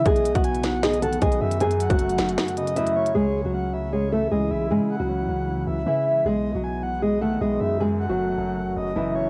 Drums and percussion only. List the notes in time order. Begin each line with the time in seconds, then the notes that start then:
0.06 kick, closed hi-hat
0.16 closed hi-hat
0.25 closed hi-hat
0.35 kick, closed hi-hat
0.44 closed hi-hat
0.55 closed hi-hat
0.63 snare, closed hi-hat
0.83 snare, closed hi-hat
0.93 closed hi-hat
1.02 closed hi-hat
1.13 closed hi-hat
1.22 kick, closed hi-hat
1.32 closed hi-hat
1.51 closed hi-hat
1.60 closed hi-hat
1.71 closed hi-hat
1.80 closed hi-hat
1.90 kick, closed hi-hat
1.99 closed hi-hat
2.09 closed hi-hat
2.18 snare, closed hi-hat, open hi-hat
2.29 closed hi-hat
2.38 snare, closed hi-hat
2.48 closed hi-hat
2.57 closed hi-hat
2.67 closed hi-hat
2.77 closed hi-hat
2.87 closed hi-hat
3.06 closed hi-hat